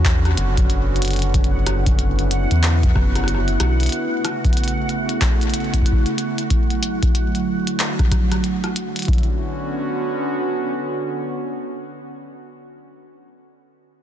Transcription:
Already playing: E2 D3 B3 C#4 F#4 F#5
0.05 kick, clap, closed hi-hat
0.25 cross-stick, closed hi-hat
0.37 F#1, closed hi-hat
0.57 kick, closed hi-hat
0.70 closed hi-hat
0.96 closed hi-hat
1.02 closed hi-hat
1.05 closed hi-hat
1.08 closed hi-hat
1.11 closed hi-hat
1.13 closed hi-hat
1.16 closed hi-hat
1.19 closed hi-hat
1.22 closed hi-hat
1.34 E4, kick, closed hi-hat
1.44 closed hi-hat
1.67 cross-stick, closed hi-hat
1.86 kick, closed hi-hat
1.99 closed hi-hat
2.19 closed hi-hat
2.31 closed hi-hat
2.51 E2, closed hi-hat
2.63 clap, closed hi-hat
2.83 kick, closed hi-hat
2.96 F#1, kick, cross-stick
3.16 cross-stick, closed hi-hat
3.24 cross-stick
3.28 closed hi-hat
3.35 cross-stick
3.48 closed hi-hat
3.60 B1, cross-stick, closed hi-hat
3.80 closed hi-hat
3.83 closed hi-hat
3.86 closed hi-hat
3.89 C#3, closed hi-hat
3.92 A3, closed hi-hat
4.25 cross-stick, closed hi-hat
4.45 kick, closed hi-hat
4.46 closed hi-hat
4.53 closed hi-hat
4.57 closed hi-hat
4.64 closed hi-hat
4.68 closed hi-hat
4.89 closed hi-hat
5.09 closed hi-hat
5.21 kick, clap, closed hi-hat
5.41 closed hi-hat
5.43 closed hi-hat
5.50 closed hi-hat
5.54 closed hi-hat
5.60 closed hi-hat
5.64 closed hi-hat
5.74 kick, closed hi-hat
5.82 kick
5.86 closed hi-hat
5.92 kick
6.06 closed hi-hat
6.18 closed hi-hat
6.38 closed hi-hat
6.50 D3 F#3, kick, closed hi-hat
6.70 closed hi-hat
6.83 closed hi-hat
7.03 kick, closed hi-hat
7.15 closed hi-hat
7.35 closed hi-hat
7.67 closed hi-hat
7.79 clap, closed hi-hat
7.99 kick, cross-stick, closed hi-hat
8.12 kick, cross-stick, closed hi-hat
8.32 cross-stick, closed hi-hat
8.44 closed hi-hat
8.64 cross-stick, closed hi-hat
8.76 closed hi-hat
8.96 closed hi-hat
8.99 closed hi-hat
9.02 closed hi-hat
9.05 kick, closed hi-hat
9.08 D3 B3 C#4 F#4, closed hi-hat
9.13 closed hi-hat
9.18 closed hi-hat
9.23 closed hi-hat

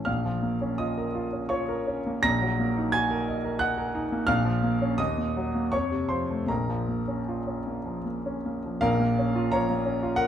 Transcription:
0.05 A#1 A#2 F5 F6
0.25 F3
0.43 A#3
0.62 C#4
0.78 F4 D#5 D#6
0.98 A#4
1.15 F4
1.33 C#4
1.49 F4 C#5 C#6
1.69 A#4
1.87 C#4
2.07 A#3
2.23 A#1 A#2 A#5 A#6
2.42 F#3
2.60 A#3
2.77 D#4
2.92 F#4 G#5 G#6
3.11 A#4
3.28 D#5
3.44 A#4
3.59 D#5 F#5 F#6
3.78 A#4
3.95 D#4
4.12 A#3
4.27 A#1 A#2 F5 F6
4.45 F3
4.63 A#3
4.82 C#4
4.98 D#2 D#5 D#6
5.18 A#2
5.37 F#3
5.55 A#3
5.72 F2 C#5 C#6
5.92 C3
6.09 F3 C5 C6
6.30 A3
6.46 A#1 A#2 A#4 A#5
6.69 F3
6.89 A#3
7.08 C#4
7.28 F4
7.47 C#4
7.67 A#3
7.86 F3
8.05 A#3
8.26 C#4
8.46 A#3
8.66 F3
8.81 A#1 A#2 A#4 F5
9.00 A#3
9.19 C#4
9.36 F4
9.52 F3 C#5 A#5
9.70 A#3
9.86 C#4
10.03 F4
10.16 A#4 F#5

